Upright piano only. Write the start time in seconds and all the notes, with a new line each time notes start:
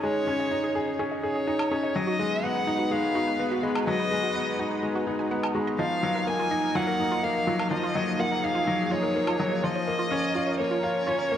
Already playing: G#3 C#4 D#4 G#4
0.03 G#3
0.27 C#4
0.51 D#4
0.75 G#4
0.99 C#4
1.23 G#4
1.47 D#4
1.71 C#4
1.96 F#3
2.19 G#3
2.44 B3
2.67 D#4
2.91 G#3
3.15 D#4
3.39 B3
3.63 G#3
3.87 F#3
4.11 G#3
4.35 B3
4.59 D#4
4.83 G#3
5.07 D#4
5.31 B3
5.55 G#3
5.79 F3
6.03 F#3
6.27 A#3
6.51 D#4
6.75 F#3
6.99 D#4
7.23 A#3
7.47 F#3
7.71 F3
7.95 F#3
8.19 A#3
8.44 D#4
8.67 F#3
8.91 D#4
9.16 A#3
9.40 F#3
9.64 F3
9.88 A#3
10.12 C#4
10.36 F4
10.60 A#3
10.84 F4
11.08 C#4
11.32 A#3